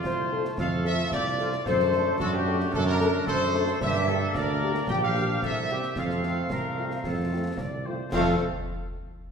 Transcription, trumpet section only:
0.06 0.43 C5 loud
0.59 0.84 F5 loud
0.85 1.11 E5 loud
1.13 1.63 D5 loud
1.65 2.20 C5 loud
2.19 2.32 A4 loud
2.34 2.74 G4 loud
2.74 2.87 A4 loud
2.87 3.25 A#4 loud
3.27 3.77 C5 loud
3.81 4.32 E5 loud
4.35 4.89 D5 loud
4.87 4.94 G5 loud
5.02 5.40 F5 loud
5.44 5.94 E5 loud
5.98 7.55 F5 loud
8.13 8.35 F5 loud

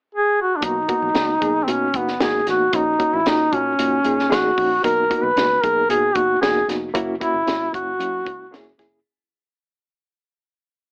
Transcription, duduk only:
0.15 0.37 G#4 medium
0.42 0.58 F#4 medium
0.56 0.68 D4 medium
0.66 1.65 D#4 medium
1.63 1.72 C4 medium
1.71 1.99 C#4 medium
1.97 2.24 B3 medium
2.23 2.48 G#4 medium
2.50 2.77 F#4 medium
2.75 3.17 D#4 medium
3.16 3.30 E4 medium
3.28 3.56 D#4 medium
3.55 4.35 C#4 medium
4.33 4.83 F#4 medium
4.84 5.16 A#4 loud
5.16 5.25 A#4 medium
5.24 5.65 B4 medium
5.63 5.89 A#4 loud
5.90 6.17 G#4 medium
6.15 6.41 F#4 medium
6.41 6.66 G#4 medium
7.21 7.70 E4 medium
7.74 8.75 F#4 loud

